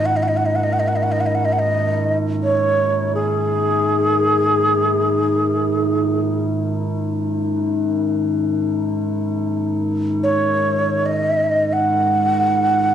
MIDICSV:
0, 0, Header, 1, 3, 480
1, 0, Start_track
1, 0, Tempo, 500000
1, 12428, End_track
2, 0, Start_track
2, 0, Title_t, "Xiao"
2, 0, Program_c, 0, 77
2, 54, Note_on_c, 0, 78, 66
2, 159, Note_on_c, 0, 75, 66
2, 174, Note_off_c, 0, 78, 0
2, 220, Note_on_c, 0, 78, 65
2, 234, Note_off_c, 0, 75, 0
2, 270, Note_on_c, 0, 75, 67
2, 285, Note_off_c, 0, 78, 0
2, 354, Note_on_c, 0, 78, 62
2, 369, Note_off_c, 0, 75, 0
2, 440, Note_on_c, 0, 75, 64
2, 455, Note_off_c, 0, 78, 0
2, 533, Note_on_c, 0, 78, 65
2, 548, Note_off_c, 0, 75, 0
2, 610, Note_on_c, 0, 75, 66
2, 624, Note_off_c, 0, 78, 0
2, 700, Note_on_c, 0, 78, 63
2, 715, Note_off_c, 0, 75, 0
2, 764, Note_on_c, 0, 75, 61
2, 778, Note_off_c, 0, 78, 0
2, 844, Note_on_c, 0, 78, 63
2, 858, Note_off_c, 0, 75, 0
2, 921, Note_on_c, 0, 75, 65
2, 936, Note_off_c, 0, 78, 0
2, 989, Note_on_c, 0, 78, 64
2, 1004, Note_off_c, 0, 75, 0
2, 1075, Note_on_c, 0, 75, 67
2, 1089, Note_off_c, 0, 78, 0
2, 1157, Note_on_c, 0, 78, 61
2, 1172, Note_off_c, 0, 75, 0
2, 1212, Note_on_c, 0, 75, 65
2, 1226, Note_off_c, 0, 78, 0
2, 1296, Note_on_c, 0, 78, 66
2, 1310, Note_off_c, 0, 75, 0
2, 1392, Note_on_c, 0, 75, 68
2, 1407, Note_off_c, 0, 78, 0
2, 1465, Note_on_c, 0, 78, 66
2, 1479, Note_off_c, 0, 75, 0
2, 1526, Note_on_c, 0, 75, 79
2, 1541, Note_off_c, 0, 78, 0
2, 2081, Note_off_c, 0, 75, 0
2, 2337, Note_on_c, 0, 73, 72
2, 3002, Note_off_c, 0, 73, 0
2, 3024, Note_on_c, 0, 68, 65
2, 6180, Note_off_c, 0, 68, 0
2, 9825, Note_on_c, 0, 73, 73
2, 10616, Note_on_c, 0, 75, 69
2, 10631, Note_off_c, 0, 73, 0
2, 11260, Note_on_c, 0, 78, 77
2, 11275, Note_off_c, 0, 75, 0
2, 12428, Note_off_c, 0, 78, 0
2, 12428, End_track
3, 0, Start_track
3, 0, Title_t, "Synth drone"
3, 0, Program_c, 1, 95
3, 0, Note_on_c, 1, 44, 67
3, 0, Note_on_c, 1, 51, 64
3, 10742, Note_off_c, 1, 44, 0
3, 10744, Note_off_c, 1, 51, 0
3, 10753, Note_on_c, 1, 44, 68
3, 10755, Note_on_c, 1, 51, 66
3, 12428, Note_off_c, 1, 44, 0
3, 12428, Note_off_c, 1, 51, 0
3, 12428, End_track
0, 0, End_of_file